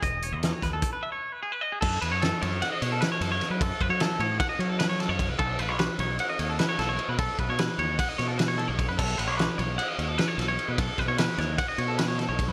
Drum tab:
CC |---------|x--------|---------|---------|
RD |---------|-xxxxxxxx|xxxxxxxxx|xxxxxxxxx|
HH |xxxxx----|---------|---------|---------|
SD |--oo-----|--o-o-o-o|--o-o-oo-|--o---oo-|
BD |o--oo----|o--------|oo--o---o|o--------|

CC |---------|x--------|---------|
RD |xxxxxxxxx|-xxxxxxxx|xxxxxxxxx|
HH |---------|---------|---------|
SD |--o--oo--|--o---oo-|-oooo-oo-|
BD |oo--o---o|o--------|oo--o---o|